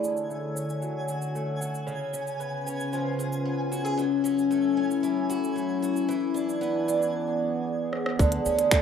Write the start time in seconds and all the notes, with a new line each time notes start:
Already playing: D3 A3 C#4 E4 G#4 C#5 G#5
0.03 C#4, shaker
0.17 shaker
0.29 A3, shaker
0.55 C#4, shaker
0.69 F#4, shaker
0.82 F#3, shaker
1.08 F#4, shaker
1.22 shaker
1.35 A3, shaker
1.61 F#4, shaker
1.75 shaker
1.85 C#3, shaker
2.13 C#4, shaker
2.23 B4
2.27 shaker
2.40 B3, shaker
2.66 C#4, shaker
2.80 F4, shaker
2.93 F3, shaker
3.19 G#4, shaker
3.33 shaker
3.45 B3
3.72 F#4, shaker
3.85 G#4, shaker
3.97 F#2 F#3, shaker
4.15 E4
4.24 C#4, shaker
4.39 shaker
4.51 A3, shaker
4.77 C#4
4.91 A4, shaker
5.03 E3, shaker
5.30 F#4, shaker
5.44 shaker
5.56 A3, shaker
5.82 F#4, shaker
5.96 shaker
6.09 E3, shaker
6.34 D4, shaker
6.49 shaker
6.55 B3
6.61 B3, shaker
6.88 D4, shaker
7.02 G#4, shaker
7.93 cross-stick
8.06 cross-stick
8.19 D2 D3, kick, shaker
8.32 closed hi-hat
8.46 D2 C#4, shaker
8.59 closed hi-hat, shaker
8.68 A3, finger snap
8.72 A3, kick, shaker